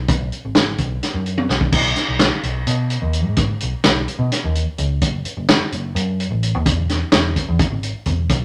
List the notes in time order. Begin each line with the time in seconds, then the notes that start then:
0.08 B1, kick, closed hi-hat
0.32 closed hi-hat
0.45 G#1
0.55 snare, closed hi-hat
0.78 B1, kick, closed hi-hat
1.03 snare, closed hi-hat
1.14 F#2
1.26 closed hi-hat
1.38 high tom
1.48 B1, snare
1.61 kick
1.72 B1, kick, crash
1.96 snare, closed hi-hat
2.08 B1
2.19 snare, closed hi-hat
2.43 B1, closed hi-hat
2.67 B2, closed hi-hat
2.90 closed hi-hat
3.02 D#2
3.13 closed hi-hat
3.26 G#2
3.36 kick, closed hi-hat
3.60 B1, closed hi-hat
3.84 B1, snare, closed hi-hat
4.08 closed hi-hat
4.19 B2
4.32 snare, closed hi-hat
4.44 D#2
4.55 closed hi-hat
4.78 C#2, closed hi-hat
5.01 F#1, kick, closed hi-hat
5.25 closed hi-hat
5.37 F#1
5.49 snare, closed hi-hat
5.72 F#1, closed hi-hat
5.95 F#2, closed hi-hat
6.20 closed hi-hat
6.31 A1
6.43 closed hi-hat
6.55 D#2
6.65 E1, kick, closed hi-hat
6.89 E1, snare, closed hi-hat
7.12 E1, snare, closed hi-hat
7.36 kick, closed hi-hat
7.49 E2
7.59 kick, closed hi-hat
7.71 G#1
7.83 closed hi-hat
8.06 E1, kick, closed hi-hat
8.29 B1, kick, closed hi-hat